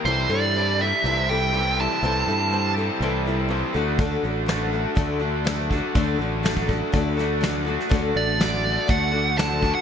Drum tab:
HH |----------------|----------------|x---x---x---x---|x---x---x---x---|
SD |----------------|----------------|----o-------o---|----o-----o-o--o|
BD |----------------|----------------|o-------o-----o-|o----oo-o-------|

HH |x---x---x---x---|
SD |----o-------o---|
BD |o-------o-----o-|